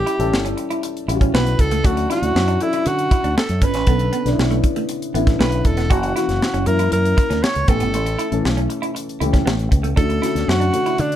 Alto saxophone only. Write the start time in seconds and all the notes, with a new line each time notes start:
Already playing: G4
1.35 B4
1.60 A4
1.86 F#4
2.11 F#4
2.62 E4
2.87 F#4
3.38 A4
3.64 B4
5.40 B4
5.66 A4
5.92 F#4
6.17 F#4
6.67 A#4
6.93 A#4
7.43 C#5
7.69 A4
9.98 A4
10.49 F#4
11.00 D4